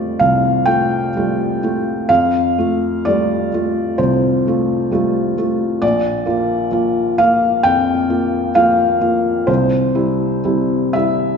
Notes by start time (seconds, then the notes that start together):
Already playing: F2 G3 A3 F4 C5 D5
0.19 C2 F5
0.66 A3 F4 G5
1.16 G3 A3 F4
1.63 A3 F4
2.09 F2 F5
2.58 A3 F4
3.05 G3 A3 F4 D5
3.54 A3 F4
3.98 C2 C5
4.47 A3 F4
4.91 G3 A3 F4
5.37 A3 F4
5.82 A#1 D5
6.26 A#3 F4
6.71 F3 A#3 F4
7.18 A#3 F4 F5
7.63 F2 G5
8.10 A#3 F4
8.55 F3 A#3 F4 F5
9.01 A#3 F4
9.47 C2 C5
9.95 G3 E4
10.44 C3 G3 E4
10.93 G3 E4 E5